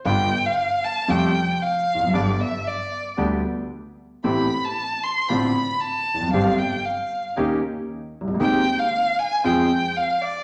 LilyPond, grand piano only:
\new Staff \with { instrumentName = "Grand piano" } { \clef bass \time 4/4 \key g \mixolydian \tempo 4 = 115 <g,, g, d g b f'>8 r4. <f, c f g a f'>8 r4 r32 e,32 f,32 fis,32 | <g,, g, d g b g'>8 r4. <d, d g b g'>8 r4. | <a,, a, e a c' g'>8 r4. <a,, a, d a c' f'>8 r4 r32 e,32 f,32 fis,32 | <g,, g, d g c' g'>8 r4. <ees, ees bes des' g'>8 r4 r32 c,32 des,32 d,32 |
<ees, ees aes c' g'>8 r4. <f, f aes c' aes'>8 r4. | }